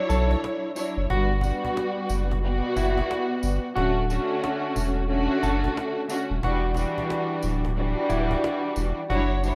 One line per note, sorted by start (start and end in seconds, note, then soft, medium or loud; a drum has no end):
0.00 0.70 F#3 loud
0.00 0.70 D4 loud
0.00 0.71 E4 loud
0.00 0.71 C#5 loud
0.09 0.36 B1 medium
0.09 0.39 A4 medium
0.09 cajon bass loud
0.09 tambourine medium
0.31 cajon bass loud
0.44 cajon slap loud
0.75 1.07 F#3 medium
0.75 1.07 D4 medium
0.75 1.08 E4 medium
0.75 1.08 C#5 medium
0.75 cajon slap soft
0.75 tambourine medium
0.97 1.07 F#1 medium
1.10 1.52 G1 loud
1.10 1.41 G2 loud
1.10 1.42 G3 medium
1.10 1.42 B3 medium
1.10 2.73 F#4 loud
1.10 1.42 F#4 loud
1.10 cajon bass loud
1.41 2.37 G2 loud
1.41 2.37 G3 medium
1.41 2.37 B3 medium
1.41 2.38 F#4 loud
1.41 cajon bass loud
1.41 tambourine soft
1.65 cajon bass loud
1.77 cajon slap loud
2.09 2.62 F#1 loud
2.09 tambourine medium
2.31 cajon bass loud
2.42 3.68 B2 loud
2.42 3.68 G3 loud
2.42 3.69 B3 medium
2.42 3.69 F#4 loud
2.42 cajon slap medium
2.76 3.03 F#1 medium
2.76 3.27 E4 medium
2.76 cajon bass loud
2.76 cajon slap soft
2.76 tambourine medium
2.97 cajon bass loud
3.11 cajon slap loud
3.43 3.59 G1 loud
3.43 tambourine medium
3.76 4.19 D1 loud
3.76 4.07 D3 loud
3.76 4.08 A3 medium
3.76 4.08 C#4 medium
3.76 5.39 F#4 loud
3.76 4.08 F#4 loud
3.76 cajon bass loud
4.10 5.04 D3 loud
4.10 5.04 A3 loud
4.10 5.05 C#4 loud
4.10 5.05 F#4 loud
4.10 tambourine soft
4.44 cajon slap loud
4.76 5.28 E1 medium
4.76 cajon bass medium
4.76 cajon slap soft
4.76 tambourine medium
5.08 6.03 D3 loud
5.08 6.03 A3 loud
5.08 6.03 C#4 loud
5.08 6.04 F#4 loud
5.08 cajon slap medium
5.43 5.69 F#1 medium
5.43 5.73 A4 medium
5.43 cajon bass loud
5.43 tambourine medium
5.64 cajon bass loud
5.77 cajon slap loud
6.09 6.41 D3 medium
6.09 6.41 A3 medium
6.09 6.41 C#4 medium
6.09 6.42 F#4 loud
6.09 cajon slap soft
6.09 tambourine medium
6.30 6.40 D#1 loud
6.42 6.85 E1 loud
6.42 6.74 E3 medium
6.42 6.75 G3 loud
6.42 6.74 D4 medium
6.42 6.74 F#4 loud
6.42 8.06 F#4 loud
6.42 cajon bass loud
6.75 7.70 E3 loud
6.75 7.71 G3 loud
6.75 7.70 D4 medium
6.75 7.71 F#4 loud
6.75 cajon bass loud
6.75 tambourine medium
6.98 cajon bass loud
7.10 cajon slap loud
7.43 7.95 D1 loud
7.43 tambourine medium
7.65 cajon bass loud
7.76 9.01 E3 loud
7.76 9.02 G3 loud
7.76 9.02 D4 loud
7.76 9.02 F#4 loud
7.76 cajon slap medium
8.09 8.36 D1 loud
8.09 8.60 E4 medium
8.09 cajon bass loud
8.09 cajon slap soft
8.09 tambourine medium
8.31 cajon bass loud
8.44 cajon slap loud
8.76 8.93 E1 loud
8.76 tambourine medium
9.10 9.52 F#1 loud
9.10 9.41 F#3 loud
9.10 9.41 D4 medium
9.10 9.42 E4 medium
9.10 9.55 F#4 loud
9.10 9.42 C#5 loud
9.10 cajon bass loud
9.43 9.55 F#3 loud
9.43 9.55 D4 medium
9.43 9.55 E4 medium
9.43 9.55 C#5 loud
9.43 cajon slap soft
9.43 tambourine medium